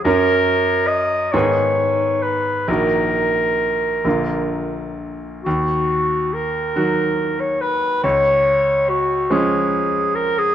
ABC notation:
X:1
M:6/8
L:1/16
Q:3/8=46
K:Ebm
V:1 name="Clarinet"
B4 e2 d4 c2 | B8- B2 z2 | G4 B4- B d c2 | d4 G2 A4 B A |]
V:2 name="Grand piano" clef=bass
[G,,G,DB]6 [A,,E,CA]6 | [B,,,E,B,G]6 [B,,,=D,B,F]6 | E,,6 [E,G,G]6 | D,,6 [F,A,D]6 |]